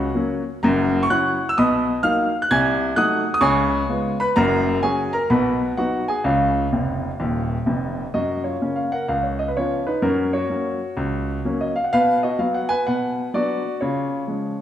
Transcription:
Already playing: F#4 C#5 F#5
0.15 F#3 A#3 C#4
0.63 F#1 F#2 A#4 F#5 A#5
1.03 C#6
1.10 F#3 C#4 E4 F#5 C#6 F#6
1.49 E6
1.58 B1 B2 D#5 B5 D#6
2.03 F#3 A#3 D#4 F5 F6
2.42 F#6
2.51 C2 C3 G#5 G#6
2.96 F#3 A3 D#4 F#5 D#6 F#6
3.34 D#6
3.41 C#2 C#3 C#5 G#5 C#6
3.89 G#3 B3 F4
4.20 B4 B5
4.36 F#1 F#2 A#4 F#5 A#5
4.83 F#3 C#4 F#4 G#4 G#5
5.13 A#4 A#5
5.30 B1 B2 B4 F#5 B5
5.77 F#3 B3 D#4 F#4 F#5
6.08 G#4 G#5
6.24 C#2 C#3 F4 C#5 F5
6.72 F1 F2
7.20 D#1 D#2
7.66 F1 F2
8.14 F#2 F#4 D#5
8.44 F4 C#5
8.61 C#3 A#3 C#4
8.76 F5
8.92 A#4 F#5
9.08 C#2 F5
9.23 C#5
9.39 D#5
9.48 B4
9.57 F3 B3 C#4 F4 C#5
9.87 D#4 B4
10.02 F#2 C#4 A#4
10.33 F#4 C#5
10.50 F#3 A#3 C#4
10.97 C#2
11.45 F#3 A#3 C#4
11.61 D#5
11.76 F5
11.84 F#5
11.93 B2 B4 F5
12.23 F#4 D#5
12.39 F#3 B3 F5
12.55 F#5
12.69 B4 G#5
12.87 B2 B4 F#5
13.34 F#3 B3 D4 F#4 D5
13.81 C#3 F4 C#5
14.28 F3 G#3 C#4

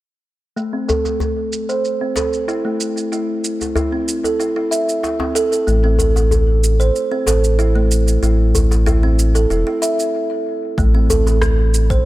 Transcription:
0.56 A3, shaker
0.73 C4
0.88 A4, djembe bass, shaker
1.05 djembe tone, shaker
1.20 djembe bass, shaker
1.53 shaker
1.69 C5, shaker
1.85 shaker
2.01 C4
2.16 A4, djembe slap, djembe tone, shaker
2.33 shaker
2.48 E4, shaker
2.65 A3
2.80 shaker
2.97 shaker
3.12 E4, shaker
3.44 shaker
3.61 djembe tone, shaker
3.76 E4, djembe bass, shaker
3.92 C4
4.08 shaker
4.24 A4, djembe tone, shaker
4.40 E4, shaker
4.56 E4
4.71 E5, shaker
4.89 shaker
5.03 E4, djembe slap, shaker
5.20 C4, djembe tone
5.35 A4, shaker
5.52 A4, shaker
5.67 A1 A3, shaker
5.84 C4
5.99 A4, djembe bass, shaker
6.16 djembe tone, shaker
6.31 djembe bass, shaker
6.64 shaker
6.80 C5, shaker
6.96 shaker
7.12 C4
7.26 A1 A4, djembe slap, djembe tone, shaker
7.44 shaker
7.59 E4, shaker
7.76 A3
7.91 shaker
8.08 shaker
8.23 A1 E4, shaker
8.55 djembe bass, shaker
8.71 djembe slap, djembe tone, shaker
8.86 E4, djembe bass, shaker
9.03 C4
9.19 shaker
9.35 A4, djembe tone, shaker
9.50 E1 E4, shaker
9.67 E4
9.82 E5, shaker
9.99 shaker
10.78 A1 A3, kick, shaker
10.95 C4
11.10 A4, djembe bass, shaker
11.27 djembe tone, shaker
11.42 cross-stick, djembe bass, shaker
11.74 shaker
11.90 C5, kick, shaker

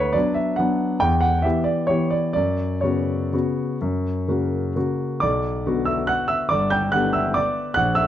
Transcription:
Already playing: D2 B4 C#5
0.13 F#3 B3 D4 D5
0.34 E5
0.56 F#3 B3 D4 F#5
1.00 E2 G5
1.21 F#5
1.42 E3 B3 G4 E5
1.64 D5
1.87 E3 B3 G4 C#5
2.10 D5
2.33 F#2 D5
2.81 C#3 B3 F#4 C#5
3.33 C#3 B3 F#4
3.81 F#2
4.28 C#3 A#3 F#4
4.76 C#3 A#3 F#4
5.20 B1 D5 D6
5.66 D3 B3 F#4
5.85 E5 E6
6.07 F#5 F#6
6.28 E5 E6
6.49 G1 D5 D6
6.70 G5 G6
6.92 D3 B3 G4 F#5 F#6
7.13 E5 E6
7.34 D5 D6
7.74 A#1 F#5 F#6
7.95 E5 E6

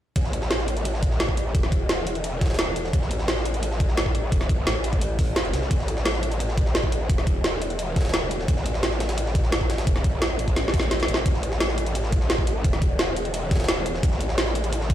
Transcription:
0.16 A1, kick, closed hi-hat
0.25 snare
0.33 closed hi-hat
0.42 snare
0.51 snare, closed hi-hat
0.59 snare
0.68 closed hi-hat
0.77 closed hi-hat
0.85 closed hi-hat
0.94 snare
1.03 kick, closed hi-hat
1.11 snare
1.20 snare, closed hi-hat
1.29 kick
1.37 closed hi-hat
1.55 E1, kick, closed hi-hat
1.63 snare, closed hi-hat
1.72 E1, kick, closed hi-hat
1.89 snare, closed hi-hat
2.07 closed hi-hat
2.15 closed hi-hat
2.24 closed hi-hat
2.41 kick, snare, closed hi-hat
2.46 snare, closed hi-hat
2.50 snare, closed hi-hat
2.54 snare, closed hi-hat
2.59 snare, closed hi-hat
2.76 closed hi-hat
2.85 snare
2.93 A1, kick, closed hi-hat
3.02 snare
3.11 closed hi-hat
3.19 snare
3.28 snare, closed hi-hat
3.37 snare
3.45 closed hi-hat
3.54 closed hi-hat
3.63 closed hi-hat
3.71 snare
3.80 kick, closed hi-hat
3.89 snare
3.97 snare, closed hi-hat
4.06 kick
4.15 closed hi-hat
4.32 E1, kick, closed hi-hat
4.41 snare, closed hi-hat
4.49 A1, kick, closed hi-hat
4.67 A1, snare, closed hi-hat
4.84 closed hi-hat
4.93 kick, closed hi-hat
5.01 closed hi-hat
5.19 A1, kick, closed hi-hat, open hi-hat
5.36 snare, closed hi-hat
5.45 closed hi-hat
5.53 C2, snare, closed hi-hat
5.62 snare
5.71 A1, kick, closed hi-hat
5.79 snare
5.88 closed hi-hat
5.97 snare
6.05 snare, closed hi-hat
6.14 snare
6.23 closed hi-hat
6.32 closed hi-hat
6.40 closed hi-hat
6.49 snare
6.58 kick, closed hi-hat
6.66 snare
6.75 snare, closed hi-hat
6.84 kick
6.92 closed hi-hat
7.10 E1, kick, closed hi-hat
7.18 snare, closed hi-hat
7.27 E1, kick, closed hi-hat
7.44 snare, closed hi-hat
7.62 closed hi-hat
7.70 closed hi-hat
7.79 closed hi-hat
7.96 kick, snare, closed hi-hat
8.01 snare, closed hi-hat
8.05 snare, closed hi-hat
8.09 snare, closed hi-hat
8.14 snare, closed hi-hat
8.31 closed hi-hat
8.40 snare
8.48 A1, kick, closed hi-hat
8.57 snare
8.66 closed hi-hat
8.74 snare
8.83 snare, closed hi-hat
8.92 snare
9.00 snare, closed hi-hat
9.09 snare, closed hi-hat
9.18 closed hi-hat
9.26 snare
9.35 kick, closed hi-hat
9.44 snare
9.52 snare, closed hi-hat
9.61 kick
9.70 snare, closed hi-hat
9.78 snare, closed hi-hat
9.87 E1, kick, closed hi-hat
9.96 snare, closed hi-hat
10.04 A1, kick, closed hi-hat
10.22 snare, closed hi-hat
10.39 A1, closed hi-hat
10.48 kick, closed hi-hat
10.56 A1, snare, closed hi-hat
10.68 snare
10.74 kick, closed hi-hat, open hi-hat
10.80 snare, closed hi-hat
10.91 snare, closed hi-hat
11.00 snare, closed hi-hat
11.03 snare
11.08 A1, closed hi-hat
11.14 snare, closed hi-hat
11.17 snare
11.26 A1, kick, closed hi-hat
11.34 snare
11.43 closed hi-hat
11.52 snare
11.60 snare, closed hi-hat
11.69 snare
11.78 closed hi-hat
11.86 closed hi-hat
11.95 closed hi-hat
12.04 snare
12.12 kick, closed hi-hat
12.21 snare
12.30 snare, closed hi-hat
12.38 kick
12.47 closed hi-hat
12.64 E1, kick, closed hi-hat
12.73 snare, closed hi-hat
12.82 E1, kick, closed hi-hat
12.99 snare, closed hi-hat
13.16 closed hi-hat
13.25 closed hi-hat
13.34 closed hi-hat
13.51 kick, snare, closed hi-hat
13.55 snare, closed hi-hat
13.60 snare, closed hi-hat
13.64 snare, closed hi-hat
13.69 snare, closed hi-hat
13.86 closed hi-hat
13.95 snare
14.03 A1, kick, closed hi-hat
14.12 snare
14.21 closed hi-hat
14.29 snare
14.38 snare, closed hi-hat
14.47 snare
14.55 closed hi-hat
14.64 closed hi-hat
14.73 closed hi-hat
14.81 snare
14.90 kick, closed hi-hat

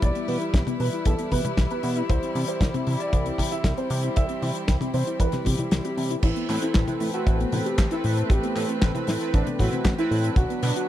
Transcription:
Already playing: G3 E4 B4
0.02 B1 E3 D5, kick, closed hi-hat
0.15 B3, closed hi-hat
0.28 B2 E3, open hi-hat
0.41 E4, closed hi-hat
0.54 B1 E3, kick, snare, closed hi-hat
0.67 B3, closed hi-hat, high tom
0.80 B2 E3 B4, open hi-hat
0.93 E4, closed hi-hat
1.05 B1 E3 A4, kick, closed hi-hat
1.19 B3, closed hi-hat
1.31 B2 E3 B4, kick, open hi-hat, high tom
1.45 E4, closed hi-hat, high tom
1.57 B1 E3, kick, snare, closed hi-hat
1.70 B3 B4, closed hi-hat
1.83 B2 E3, open hi-hat
1.96 E4, closed hi-hat
2.09 C2 E3 C4 C5, kick, closed hi-hat
2.23 C4, closed hi-hat
2.35 C3 E3, open hi-hat
2.48 E4 C5, closed hi-hat
2.61 C2 E3, kick, snare, closed hi-hat
2.74 C4, closed hi-hat, high tom
2.87 C3 E3, open hi-hat
3.00 E4 D5, closed hi-hat
3.13 C2 E3, kick, closed hi-hat
3.26 C4, closed hi-hat
3.38 C3 E3, kick, open hi-hat, high tom
3.52 E4 E5, closed hi-hat
3.64 C2 E3, kick, snare, closed hi-hat
3.78 C4 C5, closed hi-hat
3.90 C3 E3, open hi-hat
4.03 E4, closed hi-hat
4.16 C2 E3 E5, kick, closed hi-hat
4.29 C4, closed hi-hat
4.42 C3 E3, open hi-hat
4.55 E4, closed hi-hat
4.68 C2 E3, kick, snare, closed hi-hat
4.81 C4, closed hi-hat, high tom
4.94 C3 E3 C5, open hi-hat
5.07 E4, closed hi-hat
5.20 C2 E3 B4, kick, closed hi-hat
5.32 C4, snare, closed hi-hat, high tom
5.45 C3 E3 G4, kick, open hi-hat, high tom
5.58 E4, closed hi-hat, high tom
5.71 C2 E3, snare, closed hi-hat
5.84 C4 G4, closed hi-hat
5.97 C3 E3, open hi-hat
6.10 E4, closed hi-hat
6.23 A1 E3 A3 C4 E4 B4, kick, closed hi-hat, crash
6.36 B3, closed hi-hat
6.49 A2 E3 C4 E4 A4 B4, clap, open hi-hat
6.62 C4 E4, closed hi-hat
6.74 A1 E3, kick, snare, clap, closed hi-hat
6.88 C4 E4 A4 B4, closed hi-hat, high tom
7.00 A2 E3, open hi-hat
7.14 C4 E4 F#4 A4 B4, closed hi-hat
7.27 A1 E3, kick, closed hi-hat
7.40 B3, closed hi-hat
7.52 A2 E3 C4 E4 A4 B4, open hi-hat, high tom
7.66 C4 G4, closed hi-hat
7.78 A1 E3, kick, snare, clap, closed hi-hat
7.91 C4 E4 A4 B4, closed hi-hat
8.04 A2 E3, open hi-hat
8.17 A4, closed hi-hat
8.30 A1 E3 G4, kick, closed hi-hat
8.43 B3, closed hi-hat
8.56 A2 E3 C4 E4 A4 B4, clap, open hi-hat
8.69 C4, closed hi-hat
8.82 A1 E3, kick, snare, clap, closed hi-hat
8.95 C4 E4 A4 B4, closed hi-hat, high tom
9.07 A2 E3 E4, snare, open hi-hat
9.21 C4 E4 A4 B4, closed hi-hat
9.34 A1 E3 D4, kick, closed hi-hat
9.47 B3, closed hi-hat, high tom
9.59 A2 E3 C4 E4 F#4 A4 B4, kick, open hi-hat, high tom
9.72 C4, closed hi-hat, high tom
9.85 A1 E3, kick, snare, clap, closed hi-hat
9.98 C4 E4 A4 B4, closed hi-hat
10.11 A2 E3, open hi-hat
10.24 A4, closed hi-hat
10.36 B1 D3 F#3 D4 F#4, kick, closed hi-hat
10.50 B3, closed hi-hat
10.63 B2 D3 B3 D4 F#4 B4, clap, open hi-hat
10.76 D4 F#4, closed hi-hat

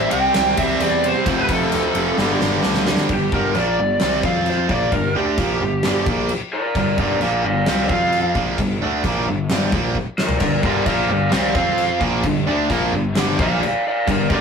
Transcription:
Already playing: C3 G3 C4
0.10 C2 C3 G3 C4 G5, ride
0.34 C2, snare, ride
0.57 C2 C3 G3 C4 E5, kick, ride
0.80 E2 C3 G3 C4 D5, ride
1.04 C3 G3 C4 C5, ride
1.26 F1 F2 C3 F3, kick, ride
1.38 B4
1.49 F1, kick, ride
1.53 A4
1.72 D2, ride
1.95 F1 F2 C3 F3, ride
2.18 G1 G2 D3 G3, snare
2.41 G1, snare
2.63 D2, snare
2.74 snare
2.87 G2 D3 G3, snare
2.97 snare
3.09 G1 G2 D3, kick, crash
3.13 G4
3.32 G1 G2 D3 G3 A#4, kick
3.55 A#1 A#2 F3 A#3 D5, snare, crash
3.79 G1 G2 D3
4.00 C2 C3 G3 C4, snare, crash
4.23 F2 F3 C4 F4 F5, kick
4.46 C5, crash
4.69 A#1 A#2 F3 A#3 D5, kick
4.92 G1 G2 D3 A#4, kick, crash
5.15 D2 D3 A3 D4 G4
5.38 A#1 A#2 F3 A#3, kick, snare, crash
5.61 G1 G2 D3
5.83 G1 G2 D3 G3, snare, crash
6.06 A#1 A#2 F3 A#3, kick
6.29 crash
6.53 A#4 D5
6.75 G1 G2 D3 A#4 D5, kick, crash
6.98 G1 G2 D3 G3 A#4 D5, kick
7.20 A#1 A#2 F3 A#3 D5 F5, snare, crash
7.44 G1 G2 D3 D5 F5
7.66 C2 C3 G3 C4 D5 F5, snare, crash
7.89 F2 F3 C4 F4 F5, kick
8.13 crash
8.35 A#1 A#2 F3 A#3, kick
8.58 G1 G2 D3, kick, crash
8.81 D2 D3 A3 D4
9.04 A#1 A#2 F3 A#3, kick, snare, crash
9.28 G1 G2 D3
9.49 G1 G2 D3 G3, snare, crash
9.72 A#1 A#2 F3 A#3, kick
9.95 kick
10.18 A#4 D5, snare
10.29 floor tom
10.40 G1 G2 D3 A#4 D5, kick, splash, crash
10.62 G1 G2 D3 G3 A#4 D5, kick
10.86 A#1 A#2 F3 A#3 D5 F5, kick, crash
11.09 G1 G2 D3 D5 F5
11.31 C2 C3 G3 C4 D5 F5, snare, crash
11.54 F2 F3 C4 F4 F5, kick
11.78 crash
11.99 A#1 A#2 F3 A#3, kick
12.23 G1 G2 D3, kick, crash
12.47 D2 D3 A3 D4
12.70 A#1 A#2 F3 A#3, kick, snare, crash
12.92 G1 G2 D3
13.15 G1 G2 D3 G3, snare, crash
13.39 A#1 A#2 F3 A#3 D5 F5, kick
13.63 D5 F5, crash
13.88 D5 F5
14.07 G1 G2 D3 A#4 D5, kick, crash
14.29 G1 G2 D3 G3 A#4 D5, kick

